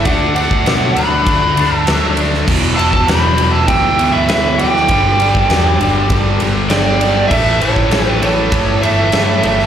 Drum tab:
CC |----------------|x---------------|----------------|x---------------|
RD |x-x-x-x-x-x-x-x-|--x-x-x-x-x-x-x-|x-x-x-x-x-x-x-x-|--x-x-x-x-x-x-x-|
SD |----o-------o--o|----o-------o--o|----o-------o---|----o-------o--o|
BD |o--o----o-------|o--o----o-------|o--o----o-------|o--o----o-------|